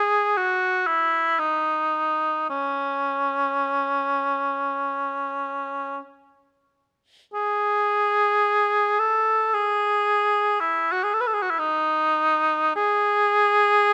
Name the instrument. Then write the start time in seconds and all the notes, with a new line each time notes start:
cor anglais
Already playing: G#4
0.37 F#4
0.87 E4
1.39 D#4
2.50 C#4
7.33 G#4
8.99 A4
9.54 G#4
10.60 E4
10.92 F#4
11.04 G#4
11.13 A4
11.21 B4
11.27 A4
11.33 G#4
11.42 F#4
11.51 E4
11.59 D#4
12.76 G#4